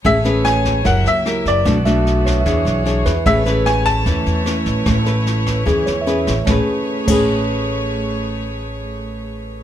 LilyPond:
<<
  \new Staff \with { instrumentName = "Grand piano" } { \time 4/4 \key a \major \tempo 4 = 149 e''4 gis''4 fis''8 e''4 d''8~ | d''4. r2 r8 | e''4 gis''8 a''2~ a''8~ | a''2. r4 |
r1 | r1 | }
  \new Staff \with { instrumentName = "Tine electric piano" } { \time 4/4 \key a \major r4 cis''4~ cis''16 r4. r16 | r8 e''4 cis''16 e''4 r8. b'8~ | b'8 r2. r8 | r2 r8 cis''16 e''4~ e''16 |
cis''8 r4 cis''2~ cis''8~ | cis''1 | }
  \new Staff \with { instrumentName = "String section" } { \time 4/4 \key a \major << { <a b' cis''>2 <ais g' e''>2 | <b a'>2 <gis' cis''>2 | <a b' cis''>1~ | <a b' cis''>1 |
<a gis' b' cis''>1~ | <a gis' b' cis''>1 | } \\ { gis'2 r2 | fis'1 | e'1~ | e'1 |
r1 | r1 | } >> }
  \new Staff \with { instrumentName = "Nylon-string guitar" } { \time 4/4 \key a \major << { <cis' gis' b'>8 <cis' gis' b'>4. <e' g' ais'>8 r8 <e' g' ais'>4 | <a d' fis'>8 <a d' fis'>4. <d' gis' cis''>4 <d' gis' cis''>8 r8 | <cis' gis' b'>8 <cis' gis' b'>4. <cis' b'>4 <cis' b'>4~ | <cis' b'>8 <cis' b'>4. <cis' gis' b'>8 r8 <cis' gis' b'>8 r8 |
<a cis' gis' b'>8 r4 <a cis' gis' b'>2~ <a cis' gis' b'>8~ | <a cis' gis' b'>1 | } \\ { a2 fis2 | b,2 e2 | a2 e2 | a2 e2 |
r1 | r1 | } >> }
  \new Staff \with { instrumentName = "Upright bass" } { \clef bass \time 4/4 \key a \major a,,2 fis,,8 cis,4 fis,,8 | b,,2 e,8 b,,4 e,8 | a,,2 e,8 e,4 a,,8 | a,,2 e,8 e,4 a,,8 |
a,,8 r4 a,,2~ a,,8~ | a,,1 | }
  \new DrumStaff \with { instrumentName = "Drums" } \drummode { \time 4/4 <bd sn>8 sn8 <ss sn>8 <bd sn>8 <bd sn>8 sn8 <ss sn>8 <bd sn>8 | <bd ss sn>8 sn8 sn8 <bd ss sn>8 <bd sn>8 sn8 sn8 <bd ss sn>8 | <bd sn>8 sn8 <ss sn>8 <bd sn>8 <bd sn>8 sn8 <ss sn>8 <bd sn>8 | <bd ss sn>8 sn8 sn8 <bd ss sn>8 <bd sn>8 sn8 sn8 <bd ss sn>8 |
<bd sn>4 r8 <cymc bd>8 r4 r4 | r4 r4 r4 r4 | }
>>